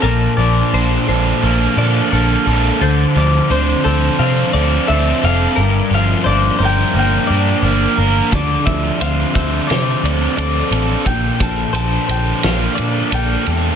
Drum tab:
RD |--------|--------|--------|xxxxxxxx|
SD |--------|--------|--------|----o---|
BD |--------|--------|--------|oo-o----|

RD |xxxxxxxx|
SD |----o---|
BD |oo------|